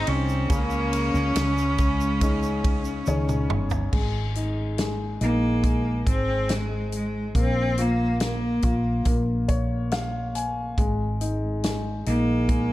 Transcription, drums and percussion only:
0.07 ride
0.29 shaker
0.50 kick, ride, shaker
0.70 shaker
0.93 ride, shaker
1.15 shaker
1.36 snare, ride, shaker
1.58 shaker
1.78 kick, ride, shaker
2.00 shaker
2.21 kick, ride, shaker
2.43 shaker
2.64 kick, ride
2.85 shaker
3.06 high tom, shaker
3.29 mid tom, shaker
3.50 mid tom
3.70 floor tom, shaker
3.93 kick, crash
4.35 closed hi-hat
4.78 snare, closed hi-hat
5.21 closed hi-hat
5.63 kick, closed hi-hat
6.07 kick, closed hi-hat
6.49 snare, closed hi-hat
6.92 closed hi-hat
7.35 kick, closed hi-hat
7.78 closed hi-hat
8.20 snare, closed hi-hat
8.62 kick, closed hi-hat
9.05 kick, closed hi-hat
9.48 kick, closed hi-hat
9.91 snare, closed hi-hat
10.35 closed hi-hat
10.78 kick, closed hi-hat
11.21 closed hi-hat
11.64 snare, closed hi-hat
12.06 closed hi-hat
12.49 kick, closed hi-hat

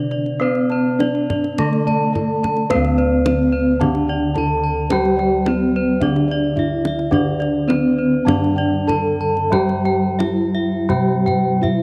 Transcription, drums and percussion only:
0.11 kendang slap
0.26 kendang slap
0.55 kendang slap
0.70 kendang slap
1.00 kendang high
1.15 kendang slap
1.30 kendang slap, kendang high, kendang low
1.44 kendang slap
1.58 kendang low
1.73 kendang slap
1.88 kendang slap, kendang low
2.15 kendang slap, kendang low
2.44 kendang slap, kendang high, kendang low
2.57 kendang slap
2.70 kendang low
2.84 kendang slap
2.99 kendang slap
3.26 kendang high
3.81 kendang high, kendang low
3.95 kendang slap
4.36 kendang low
4.90 kendang high, kendang low
5.05 kendang slap
5.19 kendang slap
5.46 kendang high
6.01 kendang low
6.16 kendang slap
6.57 kendang low
6.85 kendang high
6.99 kendang slap
7.12 kendang low
7.42 kendang slap
7.70 kendang high
8.28 kendang high, kendang low
8.44 kendang slap
8.89 kendang low
9.37 kendang slap
9.53 kendang high, kendang low
9.69 kendang slap
9.86 kendang slap
10.20 kendang slap, kendang high
10.90 kendang low
11.27 kendang slap, kendang low
11.64 kendang low

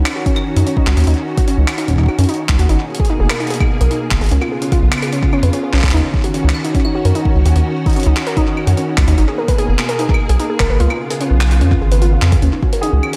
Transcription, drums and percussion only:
0.06 clap, claves
0.26 kick, closed hi-hat
0.36 claves
0.57 closed hi-hat
0.67 closed hi-hat
0.77 kick
0.87 clap
0.97 closed hi-hat
1.00 closed hi-hat
1.04 closed hi-hat
1.07 closed hi-hat
1.11 closed hi-hat
1.14 closed hi-hat
1.38 kick, closed hi-hat
1.48 closed hi-hat
1.68 clap, claves
1.78 closed hi-hat
1.88 kick, closed hi-hat
1.91 kick
1.93 kick
1.96 kick
1.98 kick
2.01 kick
2.03 kick
2.06 kick, claves
2.19 closed hi-hat
2.24 closed hi-hat
2.29 closed hi-hat
2.34 closed hi-hat
2.49 kick, clap
2.59 closed hi-hat
2.69 closed hi-hat
2.95 closed hi-hat
3.00 kick
3.05 closed hi-hat
3.30 clap, claves
3.40 closed hi-hat
3.47 closed hi-hat
3.50 closed hi-hat
3.54 closed hi-hat
3.60 kick, claves
3.81 closed hi-hat
3.91 closed hi-hat
4.11 kick, clap
4.21 closed hi-hat
4.24 closed hi-hat
4.26 closed hi-hat
4.29 closed hi-hat
4.31 closed hi-hat
4.42 claves
4.62 closed hi-hat
4.72 kick, closed hi-hat
4.92 clap, claves
4.97 claves
5.02 closed hi-hat, claves
5.07 claves
5.13 closed hi-hat
5.23 kick
5.33 claves
5.43 closed hi-hat
5.53 closed hi-hat
5.73 clap
5.76 clap
5.78 clap
5.81 kick, clap
5.83 clap, closed hi-hat
5.86 clap
5.89 clap, closed hi-hat
5.91 clap, closed hi-hat
5.97 closed hi-hat
6.14 kick
6.24 closed hi-hat
6.34 closed hi-hat
6.49 clap
6.54 claves
6.65 closed hi-hat
6.75 kick, closed hi-hat
6.85 claves
7.05 closed hi-hat
7.15 closed hi-hat
7.25 kick
7.46 closed hi-hat
7.56 closed hi-hat
7.86 kick, closed hi-hat
7.90 closed hi-hat
7.93 closed hi-hat
7.96 closed hi-hat
8.00 closed hi-hat
8.03 closed hi-hat
8.17 clap, claves
8.27 closed hi-hat
8.37 kick, closed hi-hat
8.57 claves
8.67 closed hi-hat
8.77 closed hi-hat
8.98 kick, clap
9.08 closed hi-hat
9.18 closed hi-hat
9.48 kick, closed hi-hat
9.58 closed hi-hat
9.79 clap, claves
9.89 closed hi-hat
9.99 closed hi-hat
10.09 kick
10.14 claves
10.29 closed hi-hat
10.40 closed hi-hat
10.60 kick, clap
10.80 closed hi-hat
10.90 claves
11.10 closed hi-hat
11.21 closed hi-hat
11.41 clap, claves
11.51 closed hi-hat
11.61 closed hi-hat
11.71 kick
11.92 closed hi-hat
12.02 closed hi-hat
12.22 clap
12.32 kick, closed hi-hat
12.42 closed hi-hat
12.63 kick
12.73 closed hi-hat
12.83 closed hi-hat
13.03 claves
13.13 closed hi-hat

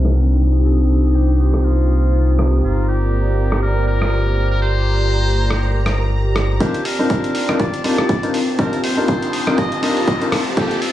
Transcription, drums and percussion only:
0.05 cross-stick
1.54 cross-stick
2.39 cross-stick
3.52 cross-stick
4.02 cross-stick
5.50 cross-stick
5.86 cross-stick
6.36 cross-stick
6.60 kick, closed hi-hat
6.74 closed hi-hat
6.85 open hi-hat
7.10 kick, closed hi-hat
7.24 closed hi-hat
7.35 open hi-hat
7.49 cross-stick, closed hi-hat
7.60 kick, closed hi-hat
7.74 closed hi-hat
7.84 open hi-hat
7.98 cross-stick, closed hi-hat
8.09 kick, closed hi-hat
8.23 closed hi-hat
8.34 open hi-hat
8.59 kick, closed hi-hat
8.73 closed hi-hat
8.84 open hi-hat
9.08 kick, closed hi-hat
9.22 closed hi-hat
9.33 open hi-hat
9.47 cross-stick, closed hi-hat
9.58 kick, closed hi-hat
9.72 closed hi-hat
9.83 open hi-hat
9.97 open hi-hat
10.07 kick, closed hi-hat
10.22 closed hi-hat
10.32 cross-stick, open hi-hat
10.57 kick, closed hi-hat
10.71 closed hi-hat
10.82 open hi-hat

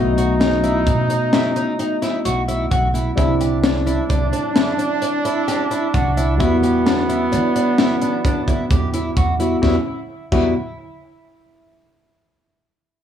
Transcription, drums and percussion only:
0.18 closed hi-hat
0.41 snare, closed hi-hat
0.64 closed hi-hat
0.87 kick, closed hi-hat
1.10 closed hi-hat
1.33 snare, closed hi-hat
1.56 closed hi-hat
1.79 closed hi-hat
2.02 snare, closed hi-hat
2.25 closed hi-hat
2.49 closed hi-hat
2.71 kick, closed hi-hat
2.95 closed hi-hat
3.18 kick, closed hi-hat
3.41 closed hi-hat
3.64 snare, closed hi-hat
3.87 closed hi-hat
4.10 kick, closed hi-hat
4.33 closed hi-hat
4.56 snare, closed hi-hat
4.79 closed hi-hat
5.02 closed hi-hat
5.25 closed hi-hat
5.48 snare, closed hi-hat
5.71 closed hi-hat
5.94 kick, closed hi-hat
6.17 closed hi-hat
6.40 kick, closed hi-hat
6.64 closed hi-hat
6.87 snare, closed hi-hat
7.10 closed hi-hat
7.33 closed hi-hat
7.56 closed hi-hat
7.78 snare, closed hi-hat
8.02 closed hi-hat
8.25 kick, closed hi-hat
8.48 kick, closed hi-hat
8.71 kick, closed hi-hat
8.94 closed hi-hat
9.17 kick, closed hi-hat
9.40 closed hi-hat
9.63 kick, snare
10.32 kick, crash

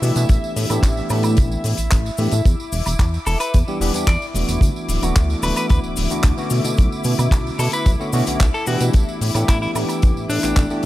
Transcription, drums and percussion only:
0.03 open hi-hat, cabasa
0.16 closed hi-hat, tambourine, cabasa
0.29 kick, closed hi-hat, tambourine, cabasa
0.44 tambourine
0.57 open hi-hat, cabasa
0.70 closed hi-hat, tambourine, cabasa, high woodblock
0.83 kick, clap, closed hi-hat, tambourine, cabasa
0.97 tambourine
1.10 open hi-hat, cabasa, high woodblock
1.23 closed hi-hat, tambourine, cabasa, high woodblock
1.37 kick, closed hi-hat, tambourine, cabasa
1.52 tambourine
1.64 open hi-hat, cabasa
1.78 closed hi-hat, tambourine, cabasa
1.91 kick, clap, closed hi-hat, tambourine, cabasa
2.06 tambourine
2.18 open hi-hat, cabasa
2.32 closed hi-hat, tambourine, cabasa
2.45 kick, closed hi-hat, tambourine, cabasa
2.60 tambourine
2.72 open hi-hat, cabasa
2.86 closed hi-hat, tambourine, cabasa, high woodblock
2.99 kick, clap, closed hi-hat, tambourine, cabasa
3.14 tambourine
3.26 open hi-hat, cabasa, high woodblock
3.40 closed hi-hat, tambourine, cabasa, high woodblock
3.54 kick, closed hi-hat, tambourine, cabasa
3.68 tambourine
3.81 open hi-hat, cabasa
3.94 closed hi-hat, tambourine, cabasa
4.07 kick, clap, closed hi-hat, tambourine, cabasa
4.22 tambourine
4.35 open hi-hat, cabasa
4.49 closed hi-hat, tambourine, cabasa
4.61 kick, closed hi-hat, tambourine, cabasa
4.76 tambourine
4.89 open hi-hat, cabasa
5.03 closed hi-hat, tambourine, cabasa, high woodblock
5.16 kick, clap, closed hi-hat, tambourine, cabasa
5.30 tambourine
5.43 open hi-hat, cabasa, high woodblock
5.56 closed hi-hat, tambourine, cabasa, high woodblock
5.69 kick, closed hi-hat, tambourine, cabasa
5.84 tambourine
5.96 open hi-hat, cabasa
6.10 closed hi-hat, tambourine, cabasa
6.23 kick, clap, closed hi-hat, tambourine, cabasa
6.38 tambourine
6.50 open hi-hat, cabasa
6.64 closed hi-hat, tambourine, cabasa
6.77 kick, closed hi-hat, tambourine, cabasa
6.92 tambourine
7.04 open hi-hat, cabasa
7.19 closed hi-hat, tambourine, cabasa, high woodblock
7.31 kick, clap, closed hi-hat, tambourine, cabasa
7.47 tambourine
7.59 open hi-hat, cabasa, high woodblock
7.72 closed hi-hat, tambourine, cabasa, high woodblock
7.86 kick, closed hi-hat, tambourine, cabasa
8.01 tambourine
8.13 open hi-hat, cabasa
8.27 closed hi-hat, tambourine, cabasa
8.40 kick, clap, closed hi-hat, tambourine, cabasa
8.54 tambourine
8.67 open hi-hat, cabasa
8.80 closed hi-hat, tambourine, cabasa
8.93 kick, closed hi-hat, tambourine, cabasa
9.09 tambourine
9.21 open hi-hat, cabasa
9.35 closed hi-hat, tambourine, cabasa, high woodblock
9.48 kick, clap, closed hi-hat, tambourine, cabasa
9.62 tambourine
9.75 open hi-hat, cabasa, high woodblock
9.89 closed hi-hat, tambourine, cabasa, high woodblock
10.02 kick, closed hi-hat, tambourine, cabasa
10.17 tambourine
10.30 open hi-hat, cabasa
10.43 clap, closed hi-hat, tambourine, cabasa
10.56 kick, clap, closed hi-hat, tambourine, cabasa
10.70 tambourine

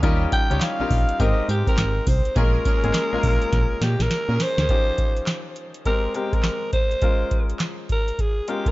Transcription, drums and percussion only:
0.03 kick, closed hi-hat, tambourine
0.32 kick, closed hi-hat, tambourine
0.51 closed hi-hat
0.61 snare, clap, closed hi-hat, tambourine
0.91 kick, open hi-hat
1.09 closed hi-hat
1.20 kick, closed hi-hat, tambourine
1.49 closed hi-hat, tambourine
1.67 kick, closed hi-hat
1.77 snare, clap, closed hi-hat, tambourine
2.07 kick, open hi-hat, tambourine
2.25 closed hi-hat
2.36 kick, closed hi-hat, tambourine
2.65 kick, closed hi-hat, tambourine
2.84 closed hi-hat
2.94 snare, clap, closed hi-hat, tambourine
3.23 kick, open hi-hat
3.42 closed hi-hat
3.53 kick, snare, closed hi-hat
3.82 snare, closed hi-hat
4.00 snare, closed hi-hat
4.11 snare, closed hi-hat
4.40 snare, open hi-hat
4.58 snare, closed hi-hat
4.69 kick, closed hi-hat
4.98 kick, closed hi-hat
5.17 closed hi-hat
5.27 snare, clap, closed hi-hat
5.56 closed hi-hat
5.74 closed hi-hat
5.85 kick, closed hi-hat
6.14 closed hi-hat
6.33 kick, closed hi-hat
6.43 snare, clap, closed hi-hat
6.73 kick, closed hi-hat
6.91 closed hi-hat
7.02 kick, closed hi-hat
7.31 kick, closed hi-hat
7.49 closed hi-hat
7.60 snare, clap, closed hi-hat
7.89 kick, closed hi-hat
8.08 closed hi-hat
8.19 kick, closed hi-hat
8.48 closed hi-hat
8.66 kick, closed hi-hat

